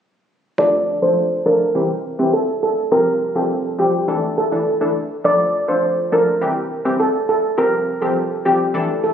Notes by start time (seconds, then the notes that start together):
0.58 F3 D4 A4 D5
1.02 F3 D4 A4 C5
1.46 F3 D4 A4 A#4
1.75 E3 C4 G4
2.19 E3 C4 G4
2.33 A4
2.63 A4
2.91 F3 C4 G4 A#4
3.35 F3 C4 G4 A4
3.79 F3 C4 G4
4.08 E3 D4 A4
4.38 A4
4.52 E3 D4 A4
4.81 E3 D4 A4
5.24 F3 D4 A4 D5
5.68 F3 D4 A4 C5
6.12 F3 D4 A4 A#4
6.41 E3 C4 G4
6.85 E3 C4 G4
7.00 A4
7.29 A4
7.58 F3 C4 G4 A#4
8.01 F3 C4 G4 A4
8.45 F3 C4 G4
8.74 E3 D4 A4
9.04 A4